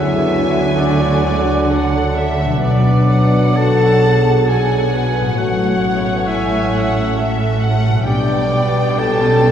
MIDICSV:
0, 0, Header, 1, 13, 480
1, 0, Start_track
1, 0, Key_signature, 3, "minor"
1, 0, Tempo, 913242
1, 1378, Time_signature, 3, 2, 24, 8
1, 1378, Tempo, 949367
1, 1858, Tempo, 896861
1, 4258, Tempo, 921659
1, 5019, End_track
2, 0, Start_track
2, 0, Title_t, "Clarinet"
2, 0, Program_c, 0, 71
2, 0, Note_on_c, 0, 78, 74
2, 2659, Note_off_c, 0, 78, 0
2, 2828, Note_on_c, 0, 78, 61
2, 4240, Note_off_c, 0, 78, 0
2, 4254, Note_on_c, 0, 79, 64
2, 5019, Note_off_c, 0, 79, 0
2, 5019, End_track
3, 0, Start_track
3, 0, Title_t, "Violin section"
3, 0, Program_c, 1, 48
3, 0, Note_on_c, 1, 80, 66
3, 894, Note_off_c, 1, 80, 0
3, 897, Note_on_c, 1, 78, 67
3, 1136, Note_off_c, 1, 78, 0
3, 1137, Note_on_c, 1, 76, 73
3, 1379, Note_off_c, 1, 76, 0
3, 1384, Note_on_c, 1, 74, 64
3, 1616, Note_off_c, 1, 74, 0
3, 1626, Note_on_c, 1, 78, 66
3, 2343, Note_off_c, 1, 78, 0
3, 2349, Note_on_c, 1, 78, 63
3, 3288, Note_off_c, 1, 78, 0
3, 3313, Note_on_c, 1, 80, 63
3, 3549, Note_off_c, 1, 80, 0
3, 3550, Note_on_c, 1, 78, 66
3, 3786, Note_off_c, 1, 78, 0
3, 3790, Note_on_c, 1, 76, 68
3, 4021, Note_on_c, 1, 78, 77
3, 4024, Note_off_c, 1, 76, 0
3, 4258, Note_off_c, 1, 78, 0
3, 4261, Note_on_c, 1, 79, 75
3, 5019, Note_off_c, 1, 79, 0
3, 5019, End_track
4, 0, Start_track
4, 0, Title_t, "Flute"
4, 0, Program_c, 2, 73
4, 0, Note_on_c, 2, 76, 86
4, 421, Note_on_c, 2, 74, 80
4, 429, Note_off_c, 2, 76, 0
4, 1138, Note_off_c, 2, 74, 0
4, 1382, Note_on_c, 2, 74, 75
4, 1864, Note_on_c, 2, 81, 88
4, 1872, Note_off_c, 2, 74, 0
4, 2352, Note_on_c, 2, 80, 68
4, 2360, Note_off_c, 2, 81, 0
4, 2825, Note_on_c, 2, 78, 73
4, 2833, Note_off_c, 2, 80, 0
4, 3302, Note_on_c, 2, 76, 74
4, 3310, Note_off_c, 2, 78, 0
4, 4020, Note_off_c, 2, 76, 0
4, 4256, Note_on_c, 2, 74, 76
4, 4746, Note_on_c, 2, 81, 99
4, 4754, Note_off_c, 2, 74, 0
4, 5019, Note_off_c, 2, 81, 0
4, 5019, End_track
5, 0, Start_track
5, 0, Title_t, "Oboe"
5, 0, Program_c, 3, 68
5, 0, Note_on_c, 3, 76, 77
5, 415, Note_on_c, 3, 74, 74
5, 423, Note_off_c, 3, 76, 0
5, 1135, Note_off_c, 3, 74, 0
5, 1382, Note_on_c, 3, 74, 77
5, 1855, Note_on_c, 3, 81, 91
5, 1863, Note_off_c, 3, 74, 0
5, 2341, Note_off_c, 3, 81, 0
5, 2348, Note_on_c, 3, 80, 64
5, 2817, Note_off_c, 3, 80, 0
5, 2827, Note_on_c, 3, 78, 82
5, 3301, Note_on_c, 3, 76, 82
5, 3309, Note_off_c, 3, 78, 0
5, 4020, Note_off_c, 3, 76, 0
5, 4264, Note_on_c, 3, 74, 84
5, 4746, Note_on_c, 3, 81, 96
5, 4754, Note_off_c, 3, 74, 0
5, 5019, Note_off_c, 3, 81, 0
5, 5019, End_track
6, 0, Start_track
6, 0, Title_t, "Violin section"
6, 0, Program_c, 4, 48
6, 0, Note_on_c, 4, 76, 80
6, 412, Note_off_c, 4, 76, 0
6, 421, Note_on_c, 4, 74, 80
6, 1124, Note_off_c, 4, 74, 0
6, 1381, Note_on_c, 4, 74, 72
6, 1839, Note_off_c, 4, 74, 0
6, 1854, Note_on_c, 4, 81, 97
6, 2340, Note_off_c, 4, 81, 0
6, 2349, Note_on_c, 4, 80, 79
6, 2827, Note_off_c, 4, 80, 0
6, 2831, Note_on_c, 4, 78, 84
6, 3297, Note_off_c, 4, 78, 0
6, 3311, Note_on_c, 4, 76, 81
6, 4025, Note_off_c, 4, 76, 0
6, 4261, Note_on_c, 4, 74, 78
6, 4724, Note_off_c, 4, 74, 0
6, 4746, Note_on_c, 4, 81, 92
6, 5019, Note_off_c, 4, 81, 0
6, 5019, End_track
7, 0, Start_track
7, 0, Title_t, "Harp"
7, 0, Program_c, 5, 46
7, 0, Note_on_c, 5, 50, 58
7, 0, Note_on_c, 5, 54, 51
7, 0, Note_on_c, 5, 66, 50
7, 0, Note_on_c, 5, 69, 48
7, 0, Note_on_c, 5, 74, 47
7, 471, Note_off_c, 5, 69, 0
7, 1286, Note_on_c, 5, 47, 61
7, 1303, Note_off_c, 5, 54, 0
7, 1310, Note_on_c, 5, 54, 53
7, 1326, Note_off_c, 5, 66, 0
7, 1332, Note_on_c, 5, 66, 52
7, 1350, Note_off_c, 5, 74, 0
7, 1354, Note_off_c, 5, 50, 0
7, 1356, Note_on_c, 5, 74, 42
7, 2734, Note_on_c, 5, 45, 53
7, 2753, Note_off_c, 5, 54, 0
7, 2759, Note_on_c, 5, 54, 50
7, 2776, Note_off_c, 5, 66, 0
7, 2783, Note_on_c, 5, 66, 47
7, 2796, Note_off_c, 5, 47, 0
7, 2807, Note_on_c, 5, 73, 48
7, 2832, Note_off_c, 5, 74, 0
7, 4165, Note_on_c, 5, 47, 56
7, 4188, Note_on_c, 5, 59, 47
7, 4211, Note_on_c, 5, 67, 49
7, 4233, Note_off_c, 5, 45, 0
7, 4235, Note_on_c, 5, 71, 45
7, 4246, Note_off_c, 5, 54, 0
7, 4257, Note_off_c, 5, 66, 0
7, 4269, Note_off_c, 5, 73, 0
7, 5019, Note_off_c, 5, 47, 0
7, 5019, Note_off_c, 5, 59, 0
7, 5019, Note_off_c, 5, 67, 0
7, 5019, Note_off_c, 5, 71, 0
7, 5019, End_track
8, 0, Start_track
8, 0, Title_t, "French horn section"
8, 0, Program_c, 6, 60
8, 0, Note_on_c, 6, 64, 98
8, 406, Note_on_c, 6, 62, 96
8, 411, Note_off_c, 6, 64, 0
8, 1131, Note_off_c, 6, 62, 0
8, 1376, Note_on_c, 6, 62, 89
8, 1836, Note_off_c, 6, 62, 0
8, 1854, Note_on_c, 6, 69, 109
8, 2330, Note_off_c, 6, 69, 0
8, 2340, Note_on_c, 6, 68, 82
8, 2818, Note_on_c, 6, 66, 94
8, 2823, Note_off_c, 6, 68, 0
8, 3291, Note_off_c, 6, 66, 0
8, 3304, Note_on_c, 6, 64, 84
8, 4021, Note_off_c, 6, 64, 0
8, 4251, Note_on_c, 6, 62, 99
8, 4719, Note_off_c, 6, 62, 0
8, 4738, Note_on_c, 6, 69, 110
8, 5019, Note_off_c, 6, 69, 0
8, 5019, End_track
9, 0, Start_track
9, 0, Title_t, "Viola section"
9, 0, Program_c, 7, 48
9, 0, Note_on_c, 7, 59, 59
9, 0, Note_on_c, 7, 68, 67
9, 175, Note_off_c, 7, 68, 0
9, 187, Note_on_c, 7, 66, 76
9, 408, Note_off_c, 7, 59, 0
9, 420, Note_on_c, 7, 57, 63
9, 652, Note_off_c, 7, 57, 0
9, 655, Note_on_c, 7, 56, 61
9, 892, Note_on_c, 7, 54, 58
9, 894, Note_off_c, 7, 56, 0
9, 895, Note_on_c, 7, 69, 57
9, 899, Note_off_c, 7, 66, 0
9, 1378, Note_off_c, 7, 69, 0
9, 1379, Note_on_c, 7, 71, 61
9, 1848, Note_off_c, 7, 71, 0
9, 1856, Note_on_c, 7, 66, 66
9, 2101, Note_off_c, 7, 66, 0
9, 2101, Note_on_c, 7, 68, 61
9, 2338, Note_on_c, 7, 69, 56
9, 2342, Note_off_c, 7, 68, 0
9, 2581, Note_off_c, 7, 69, 0
9, 2582, Note_on_c, 7, 71, 61
9, 2818, Note_off_c, 7, 71, 0
9, 2818, Note_on_c, 7, 57, 63
9, 2819, Note_on_c, 7, 73, 62
9, 2823, Note_off_c, 7, 54, 0
9, 3056, Note_off_c, 7, 57, 0
9, 3059, Note_on_c, 7, 59, 76
9, 3301, Note_off_c, 7, 59, 0
9, 3302, Note_on_c, 7, 61, 64
9, 3773, Note_off_c, 7, 61, 0
9, 3782, Note_off_c, 7, 73, 0
9, 3782, Note_on_c, 7, 69, 60
9, 3786, Note_on_c, 7, 61, 57
9, 4250, Note_off_c, 7, 61, 0
9, 4258, Note_off_c, 7, 69, 0
9, 4260, Note_on_c, 7, 67, 63
9, 4261, Note_on_c, 7, 59, 59
9, 4494, Note_off_c, 7, 59, 0
9, 4500, Note_on_c, 7, 59, 80
9, 4739, Note_off_c, 7, 59, 0
9, 4746, Note_on_c, 7, 61, 71
9, 4977, Note_off_c, 7, 61, 0
9, 4985, Note_on_c, 7, 62, 67
9, 5019, Note_off_c, 7, 62, 0
9, 5019, Note_off_c, 7, 67, 0
9, 5019, End_track
10, 0, Start_track
10, 0, Title_t, "Trombone section"
10, 0, Program_c, 8, 61
10, 0, Note_on_c, 8, 54, 66
10, 0, Note_on_c, 8, 62, 68
10, 1357, Note_off_c, 8, 54, 0
10, 1382, Note_on_c, 8, 54, 64
10, 2739, Note_off_c, 8, 62, 0
10, 2830, Note_on_c, 8, 61, 64
10, 4239, Note_off_c, 8, 54, 0
10, 4240, Note_off_c, 8, 61, 0
10, 4262, Note_on_c, 8, 55, 67
10, 4265, Note_on_c, 8, 59, 61
10, 5019, Note_off_c, 8, 55, 0
10, 5019, Note_off_c, 8, 59, 0
10, 5019, End_track
11, 0, Start_track
11, 0, Title_t, "Bassoon"
11, 0, Program_c, 10, 70
11, 0, Note_on_c, 10, 54, 72
11, 1358, Note_off_c, 10, 54, 0
11, 1384, Note_on_c, 10, 54, 65
11, 2660, Note_off_c, 10, 54, 0
11, 2825, Note_on_c, 10, 57, 63
11, 4238, Note_off_c, 10, 57, 0
11, 4262, Note_on_c, 10, 55, 65
11, 5019, Note_off_c, 10, 55, 0
11, 5019, End_track
12, 0, Start_track
12, 0, Title_t, "Cello section"
12, 0, Program_c, 11, 48
12, 0, Note_on_c, 11, 50, 73
12, 1356, Note_off_c, 11, 50, 0
12, 1378, Note_on_c, 11, 47, 61
12, 2802, Note_off_c, 11, 47, 0
12, 2819, Note_on_c, 11, 45, 61
12, 4235, Note_off_c, 11, 45, 0
12, 4259, Note_on_c, 11, 47, 70
12, 5019, Note_off_c, 11, 47, 0
12, 5019, End_track
13, 0, Start_track
13, 0, Title_t, "Double bass section"
13, 0, Program_c, 12, 48
13, 0, Note_on_c, 12, 38, 66
13, 1358, Note_off_c, 12, 38, 0
13, 1377, Note_on_c, 12, 35, 64
13, 2802, Note_off_c, 12, 35, 0
13, 2825, Note_on_c, 12, 33, 64
13, 4238, Note_off_c, 12, 33, 0
13, 4260, Note_on_c, 12, 35, 66
13, 5019, Note_off_c, 12, 35, 0
13, 5019, End_track
0, 0, End_of_file